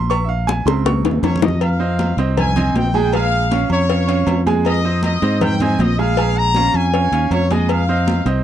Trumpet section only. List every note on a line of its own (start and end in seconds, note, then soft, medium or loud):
1.24 1.42 C#5 medium
1.43 1.61 D#5 medium
1.62 2.19 F5 loud
2.38 2.73 G#5 loud
2.77 3.14 G5 loud
3.14 3.67 F5 loud
3.71 4.43 C#5 loud
4.66 5.01 D#5 loud
5.04 5.39 D#5 loud
5.42 5.61 G5 loud
5.62 5.80 G#5 loud
5.80 5.99 D#5 loud
5.99 6.37 F5 loud
6.37 6.74 A#5 loud
6.76 7.32 G#5 loud
7.33 7.50 C#5 loud
7.51 7.70 D#5 medium
7.70 8.27 F5 loud